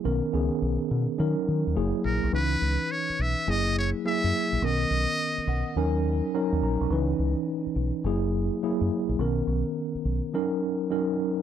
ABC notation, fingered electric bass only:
X:1
M:4/4
L:1/16
Q:"Swing 16ths" 1/4=105
K:C#dor
V:1 name="Fingered electric bass" clef=bass
B,,, z C,, z B,,, z B,, z D, z D, D,, F,,, z A,,, B,,, | C,,2 C,, z3 B,,, z F,,,4 z F,, z A,,, | B,,,2 B,,, z3 B,,, z D,,4 z D,, A,,, B,,, | C,,2 C,, z3 B,,, z F,,,4 z F,, z A,,, |
B,,,2 B,,, z3 B,,, z8 z |]